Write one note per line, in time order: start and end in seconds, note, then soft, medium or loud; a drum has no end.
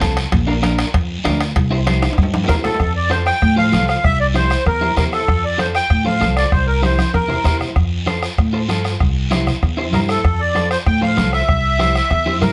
0.00 0.26 C2 medium
0.00 0.17 C4 medium
0.00 0.17 F4 medium
0.00 0.18 A4 medium
0.00 bombo low medium
0.00 bombo rim medium
0.00 high conga medium
0.00 low conga medium
0.00 high timbale medium
0.00 short guiro medium
0.17 bombo rim medium
0.17 high timbale medium
0.17 short guiro medium
0.32 0.82 A#1 loud
0.32 bombo low medium
0.32 bombo rim medium
0.32 high timbale medium
0.32 long guiro medium
0.47 0.53 D4 medium
0.47 0.53 F4 medium
0.47 0.53 A#4 medium
0.62 0.84 D4 medium
0.62 0.85 F4 medium
0.62 0.85 A#4 loud
0.62 bombo rim medium
0.62 high conga medium
0.62 high timbale medium
0.62 short guiro medium
0.78 bombo rim medium
0.78 high timbale medium
0.78 short guiro medium
0.94 1.19 F2 loud
0.94 bombo low medium
0.94 bombo rim medium
0.94 high timbale medium
0.94 long guiro medium
1.24 1.50 D2 medium
1.24 1.41 D4 medium
1.24 1.41 F4 medium
1.24 1.41 A#4 medium
1.24 bombo rim medium
1.24 high conga medium
1.24 high timbale medium
1.24 low timbale medium
1.24 short guiro medium
1.40 bombo rim medium
1.40 high timbale medium
1.40 short guiro medium
1.56 2.06 C2 loud
1.56 bombo low medium
1.56 bombo rim medium
1.56 high timbale medium
1.56 long guiro medium
1.71 1.77 E4 medium
1.71 1.77 G4 medium
1.71 1.77 C5 medium
1.86 2.08 E4 medium
1.86 2.09 G4 medium
1.86 2.09 C5 loud
1.86 bombo rim medium
1.86 high conga medium
1.86 high timbale medium
1.86 short guiro medium
2.02 bombo rim medium
2.02 high timbale medium
2.02 short guiro medium
2.13 high timbale medium
2.17 2.43 G2 loud
2.17 bombo low medium
2.17 bombo rim medium
2.17 long guiro medium
2.23 low timbale medium
2.34 high conga medium
2.34 high timbale loud
2.44 2.65 E4 medium
2.44 low timbale medium
2.48 2.74 E2 medium
2.48 2.65 G4 medium
2.48 2.56 A#4 medium
2.48 2.65 C5 medium
2.48 bombo low medium
2.48 bombo rim medium
2.48 low conga medium
2.48 short guiro medium
2.54 low timbale medium
2.64 2.93 A4 medium
2.64 bombo rim medium
2.64 low conga medium
2.64 low timbale medium
2.64 short guiro medium
2.74 low timbale medium
2.80 3.30 F2 medium
2.80 bombo low medium
2.80 bombo rim medium
2.80 long guiro medium
2.96 3.10 D5 medium
3.10 3.27 F4 medium
3.10 3.27 A4 medium
3.10 3.27 C5 medium
3.10 3.18 C5 medium
3.10 bombo rim medium
3.10 high conga medium
3.10 short guiro medium
3.26 3.55 G5 loud
3.26 bombo rim medium
3.26 short guiro medium
3.42 3.74 A2 medium
3.42 bombo low medium
3.42 bombo rim medium
3.42 long guiro medium
3.56 3.62 F4 medium
3.56 3.63 A4 soft
3.56 3.63 C5 medium
3.56 3.87 F5 loud
3.56 high conga medium
3.72 3.98 C2 medium
3.72 3.94 F4 medium
3.72 3.95 A4 medium
3.72 3.95 C5 medium
3.72 bombo rim medium
3.72 high conga medium
3.72 short guiro medium
3.88 4.05 F5 medium
3.88 bombo rim medium
3.88 short guiro medium
4.04 4.54 C2 medium
4.04 4.19 E5 loud
4.04 bombo low medium
4.04 bombo rim medium
4.04 long guiro medium
4.20 4.27 D5 medium
4.34 4.51 E4 medium
4.34 4.51 G4 medium
4.34 4.51 C5 medium
4.34 4.64 C5 medium
4.34 bombo rim medium
4.34 high conga medium
4.34 short guiro medium
4.50 bombo rim medium
4.50 short guiro medium
4.66 4.91 E2 medium
4.66 4.95 A#4 medium
4.66 bombo low medium
4.66 bombo rim medium
4.66 long guiro medium
4.81 4.87 E4 medium
4.81 4.87 G4 medium
4.81 4.87 C5 medium
4.81 high conga medium
4.97 5.22 E2 medium
4.97 5.18 E4 medium
4.97 5.19 G4 medium
4.97 5.05 A#4 medium
4.97 5.19 C5 medium
4.97 bombo low medium
4.97 bombo rim medium
4.97 high conga medium
4.97 low conga medium
4.97 short guiro medium
5.12 5.45 A4 medium
5.12 bombo rim medium
5.12 short guiro medium
5.28 5.78 F2 medium
5.28 bombo low medium
5.28 bombo rim medium
5.28 long guiro medium
5.45 5.58 D5 medium
5.58 5.75 F4 medium
5.58 5.75 A4 medium
5.58 5.75 C5 medium
5.58 5.67 C5 medium
5.58 bombo rim medium
5.58 high conga medium
5.58 short guiro medium
5.75 6.04 G5 loud
5.75 bombo rim medium
5.75 short guiro medium
5.90 6.23 A2 medium
5.90 bombo low medium
5.90 bombo rim medium
5.90 long guiro medium
6.05 6.11 F4 medium
6.05 6.11 A4 soft
6.05 6.11 C5 medium
6.05 6.34 F5 medium
6.05 high conga medium
6.20 6.46 C2 medium
6.20 6.42 F4 medium
6.20 6.43 A4 medium
6.20 6.43 C5 medium
6.20 bombo rim medium
6.20 high conga medium
6.20 short guiro medium
6.37 6.51 D5 medium
6.37 bombo rim medium
6.37 short guiro medium
6.52 7.02 C2 medium
6.52 6.66 C5 medium
6.52 bombo low medium
6.52 bombo rim medium
6.52 long guiro medium
6.67 6.82 A#4 medium
6.82 6.99 E4 medium
6.82 6.99 G4 medium
6.82 7.12 C5 medium
6.82 6.99 C5 medium
6.82 bombo rim medium
6.82 high conga medium
6.82 short guiro medium
6.98 bombo rim medium
6.98 high conga medium
6.98 short guiro medium
7.14 7.39 E2 loud
7.14 7.57 A#4 medium
7.14 bombo low medium
7.14 bombo rim medium
7.14 high conga medium
7.14 long guiro medium
7.28 7.35 E4 medium
7.28 7.35 G4 soft
7.28 7.35 C5 medium
7.28 low conga medium
7.44 7.70 E2 medium
7.44 7.66 E4 medium
7.44 7.67 G4 medium
7.44 7.67 C5 medium
7.44 bombo low medium
7.44 bombo rim medium
7.44 low conga medium
7.44 short guiro medium
7.60 bombo rim medium
7.60 low conga medium
7.60 short guiro medium
7.76 8.26 F2 medium
7.76 bombo low medium
7.76 bombo rim medium
7.76 long guiro medium
8.06 8.23 F4 medium
8.06 8.23 A4 medium
8.06 8.24 C5 medium
8.06 bombo rim medium
8.06 high conga medium
8.06 short guiro medium
8.23 bombo rim medium
8.23 short guiro medium
8.38 8.69 A2 loud
8.38 bombo low medium
8.38 bombo rim medium
8.38 long guiro medium
8.53 8.59 F4 medium
8.53 8.59 A4 medium
8.53 8.59 C5 medium
8.69 8.94 G2 medium
8.69 8.91 F4 medium
8.69 8.91 A4 medium
8.69 8.91 C5 medium
8.69 bombo rim medium
8.69 high conga medium
8.69 short guiro medium
8.84 bombo rim medium
8.84 short guiro medium
9.00 9.50 C2 medium
9.00 bombo low medium
9.00 bombo rim medium
9.00 long guiro medium
9.31 9.47 E4 medium
9.31 9.48 G4 medium
9.31 9.48 C5 medium
9.31 bombo rim medium
9.31 high conga medium
9.31 short guiro medium
9.47 bombo rim medium
9.47 low conga medium
9.47 short guiro medium
9.63 9.93 E2 medium
9.63 bombo low medium
9.63 bombo rim medium
9.63 long guiro medium
9.77 9.83 E4 medium
9.77 9.83 G4 medium
9.77 9.83 C5 medium
9.93 10.18 G2 medium
9.93 10.15 E4 medium
9.93 10.15 G4 medium
9.93 10.00 A#4 medium
9.93 10.15 C5 medium
9.93 bombo rim medium
9.93 high conga medium
9.93 low conga medium
9.93 short guiro medium
10.09 10.41 A4 medium
10.09 bombo rim medium
10.09 short guiro medium
10.24 10.74 F2 loud
10.24 bombo low medium
10.24 bombo rim medium
10.24 long guiro medium
10.40 10.69 D5 loud
10.55 10.71 F4 medium
10.55 10.72 A4 medium
10.55 10.72 C5 medium
10.55 bombo rim medium
10.55 high conga medium
10.55 short guiro medium
10.71 10.78 C5 medium
10.71 bombo rim medium
10.71 short guiro medium
10.86 11.19 A2 loud
10.86 11.01 G5 loud
10.86 bombo low medium
10.86 bombo rim medium
10.86 long guiro medium
11.01 11.07 F4 medium
11.01 11.07 A4 soft
11.01 11.08 C5 medium
11.01 11.31 F5 loud
11.01 high conga medium
11.17 11.43 C2 medium
11.17 11.39 F4 medium
11.17 11.39 A4 medium
11.17 11.39 C5 medium
11.17 bombo rim medium
11.17 high conga medium
11.17 short guiro medium
11.33 12.38 E5 loud
11.33 bombo rim medium
11.33 short guiro medium
11.49 11.98 C2 medium
11.49 bombo low medium
11.49 bombo rim medium
11.49 long guiro medium
11.79 11.96 E4 medium
11.79 11.96 G4 medium
11.79 11.96 C5 medium
11.79 bombo rim medium
11.79 high conga medium
11.79 short guiro medium
11.95 bombo rim medium
11.95 short guiro medium
12.11 12.42 E2 loud
12.11 bombo low medium
12.11 bombo rim medium
12.11 long guiro medium
12.26 12.32 E4 medium
12.26 12.32 G4 medium
12.26 12.32 C5 medium
12.26 high conga medium
12.41 12.53 G2 medium
12.41 12.53 E4 medium
12.41 12.53 G4 medium
12.41 12.53 A#4 medium
12.41 12.53 C5 medium
12.41 bombo rim medium
12.41 high conga medium
12.41 low conga medium
12.41 short guiro medium